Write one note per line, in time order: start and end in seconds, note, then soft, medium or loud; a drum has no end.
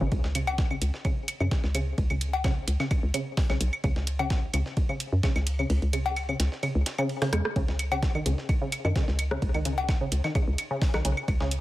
0.01 0.09 G#1 medium
0.01 0.06 C#3 loud
0.12 0.21 C#2 loud
0.12 kick loud
0.12 ride medium
0.24 0.78 C#2 medium
0.24 snare medium
0.35 0.40 C#3 medium
0.35 closed hi-hat medium
0.35 ride medium
0.35 claves soft
0.47 cowbell medium
0.47 claves medium
0.58 kick loud
0.58 snare loud
0.58 ride medium
0.71 0.75 C#3 medium
0.71 claves soft
0.82 0.91 C#2 medium
0.82 closed hi-hat medium
0.82 ride medium
0.94 snare soft
1.05 1.10 C#3 medium
1.05 kick loud
1.05 ride medium
1.05 claves soft
1.28 closed hi-hat loud
1.28 ride medium
1.28 claves medium
1.40 1.49 F#2 medium
1.40 1.45 C#3 medium
1.40 claves soft
1.51 kick loud
1.51 snare loud
1.51 ride medium
1.64 1.94 C#2 loud
1.64 snare soft
1.75 1.80 C#3 medium
1.75 closed hi-hat medium
1.75 ride medium
1.75 claves soft
1.98 2.07 C#2 loud
1.98 kick loud
1.98 ride medium
2.10 2.64 C#2 medium
2.10 2.15 C#3 medium
2.10 ride soft
2.10 claves medium
2.21 closed hi-hat medium
2.21 ride medium
2.33 cowbell medium
2.44 2.50 C#3 medium
2.44 kick loud
2.44 snare loud
2.44 ride medium
2.44 claves soft
2.68 2.77 C#2 medium
2.68 closed hi-hat medium
2.68 ride medium
2.80 2.85 C#3 medium
2.80 snare medium
2.80 claves soft
2.91 kick loud
2.91 ride medium
2.91 claves medium
3.03 3.12 C#2 loud
3.14 3.19 C#3 medium
3.14 closed hi-hat medium
3.14 ride medium
3.14 claves soft
3.37 kick loud
3.37 snare loud
3.37 open hi-hat medium
3.50 3.58 B1 medium
3.50 3.54 C#3 medium
3.50 snare medium
3.50 claves soft
3.61 3.70 B1 loud
3.61 closed hi-hat medium
3.61 ride medium
3.73 claves medium
3.84 3.93 C#2 loud
3.84 3.89 C#3 medium
3.84 kick loud
3.84 ride medium
3.84 claves soft
3.96 4.50 C#2 medium
3.96 snare medium
4.07 closed hi-hat medium
4.07 ride medium
4.19 4.24 C#3 medium
4.19 cowbell medium
4.19 claves soft
4.30 kick loud
4.30 snare loud
4.30 ride medium
4.53 4.63 C#2 medium
4.53 4.59 C#3 medium
4.53 closed hi-hat medium
4.53 ride medium
4.53 claves medium
4.66 snare soft
4.77 kick loud
4.77 ride medium
4.89 4.94 C#3 medium
4.89 claves soft
5.00 closed hi-hat medium
5.00 ride medium
5.12 5.21 F#2 medium
5.23 5.29 C#3 medium
5.23 kick loud
5.23 snare loud
5.23 ride medium
5.23 claves soft
5.36 5.66 C#2 loud
5.36 snare soft
5.36 claves medium
5.47 closed hi-hat medium
5.47 ride medium
5.59 5.64 C#3 medium
5.59 claves soft
5.70 5.79 C#2 loud
5.70 ride medium
5.82 6.36 C#2 medium
5.82 ride soft
5.93 5.98 C#3 medium
5.93 closed hi-hat medium
5.93 ride medium
5.93 claves soft
6.06 cowbell medium
6.16 ride medium
6.16 claves medium
6.29 6.33 C#3 medium
6.29 claves soft
6.40 6.49 C#2 medium
6.40 snare medium
6.40 closed hi-hat medium
6.40 ride medium
6.52 snare soft
6.63 6.68 C#3 medium
6.63 ride medium
6.63 claves soft
6.75 6.84 C#2 loud
6.86 snare loud
6.86 closed hi-hat medium
6.86 ride medium
6.98 7.03 C#3 loud
6.98 claves medium
7.09 ride medium
7.22 7.25 C#3 loud
7.22 cross-stick soft
7.22 snare loud
7.22 ride medium
7.33 7.42 E2 medium
7.33 7.36 G#3 medium
7.33 cross-stick medium
7.33 closed hi-hat medium
7.33 claves soft
7.45 cross-stick medium
7.56 7.66 C#2 loud
7.56 7.61 C#3 medium
7.56 kick loud
7.56 ride medium
7.68 8.22 C#2 medium
7.68 snare medium
7.79 closed hi-hat medium
7.79 ride medium
7.79 claves soft
7.92 7.96 C#3 medium
7.92 cowbell medium
7.92 claves medium
8.03 kick loud
8.03 snare loud
8.03 ride medium
8.15 8.18 D#3 medium
8.15 claves soft
8.26 8.35 C#2 medium
8.26 8.31 C#3 medium
8.26 closed hi-hat medium
8.26 ride medium
8.38 snare soft
8.49 kick loud
8.49 ride medium
8.49 claves soft
8.62 8.66 C#3 medium
8.72 closed hi-hat medium
8.72 ride medium
8.72 claves medium
8.85 8.93 F#2 medium
8.85 8.88 D#3 medium
8.85 claves soft
8.96 9.01 C#3 medium
8.96 kick loud
8.96 snare loud
8.96 ride medium
9.08 9.38 C#2 loud
9.08 snare soft
9.19 closed hi-hat medium
9.19 ride medium
9.19 claves soft
9.31 9.36 C#3 medium
9.31 cross-stick medium
9.42 9.52 C#2 loud
9.42 kick loud
9.42 ride medium
9.54 10.08 C#2 medium
9.54 9.57 D#3 medium
9.54 ride soft
9.54 claves medium
9.65 9.71 C#3 medium
9.65 closed hi-hat medium
9.65 ride medium
9.78 cowbell medium
9.89 kick loud
9.89 snare loud
9.89 ride medium
9.89 claves soft
10.01 10.06 C#3 medium
10.12 10.21 C#2 medium
10.12 closed hi-hat medium
10.12 ride medium
10.24 10.27 D#3 medium
10.24 snare medium
10.24 claves soft
10.35 10.40 C#3 medium
10.35 kick loud
10.35 ride medium
10.35 claves medium
10.48 10.56 C#2 loud
10.58 closed hi-hat loud
10.58 ride medium
10.58 claves soft
10.71 10.75 C#3 medium
10.82 kick loud
10.82 snare loud
10.82 open hi-hat medium
10.94 11.02 B1 medium
10.94 10.97 D#3 medium
10.94 cross-stick medium
10.94 snare medium
10.94 claves soft
11.05 11.14 B1 loud
11.05 11.10 C#3 medium
11.05 closed hi-hat medium
11.05 ride medium
11.17 claves medium
11.28 11.38 C#2 loud
11.28 kick loud
11.28 ride medium
11.28 claves soft
11.40 11.61 C#2 medium
11.40 11.45 C#3 medium
11.40 snare medium
11.51 closed hi-hat medium
11.51 ride medium